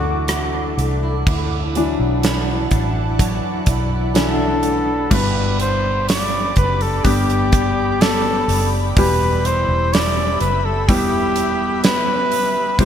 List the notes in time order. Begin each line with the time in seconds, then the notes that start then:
Already playing: D2 D3 F#3 A3 D4 E4 F#4 A4 F#5 D6
0.03 D4
0.27 A3, cross-stick, closed hi-hat
0.53 D4
0.78 C2 A3, closed hi-hat
1.03 E4
1.26 D2 D3 E4 D5 F#5 A5, kick, crash
1.75 E3 F#3 D4, closed hi-hat
2.00 B1
2.23 E4, snare, closed hi-hat
2.71 A1 D4, kick, closed hi-hat
3.19 F#3 B5, kick, closed hi-hat
3.66 B1 E4, kick, closed hi-hat
4.14 E3 F#3 D4 A4, snare, closed hi-hat
4.62 A3, closed hi-hat
5.10 G1 G2 B2 G3 D4 G4 B4 D5 B5 D6, kick, crash
5.60 C5, hi-hat pedal, open hi-hat
6.08 D5, snare, hi-hat pedal, open hi-hat
6.56 F#1 B4, kick, hi-hat pedal, open hi-hat
6.81 A4, open hi-hat
7.04 G1 G3 B3 D4 G4, kick, hi-hat pedal, open hi-hat
7.29 hi-hat pedal
7.52 kick, hi-hat pedal, open hi-hat
8.01 A4, snare, hi-hat pedal, open hi-hat
8.48 F#1, hi-hat pedal, open hi-hat
8.96 E1 B2 E3 G3 E4 G4 B4 E5 E6, kick, hi-hat pedal, open hi-hat
9.45 C5, hi-hat pedal, open hi-hat
9.68 E1
9.93 D5, snare, hi-hat pedal, open hi-hat
10.41 F#1 B4, hi-hat pedal, open hi-hat
10.65 A4
10.88 E1 G3 B3 E4 G4 F#6, kick, hi-hat pedal, open hi-hat
11.36 hi-hat pedal, open hi-hat
11.83 B4, snare, hi-hat pedal, open hi-hat
12.31 hi-hat pedal, open hi-hat
12.79 C2 C3 G3 C4 E4 G4 C5 C6 E6, kick, hi-hat pedal, open hi-hat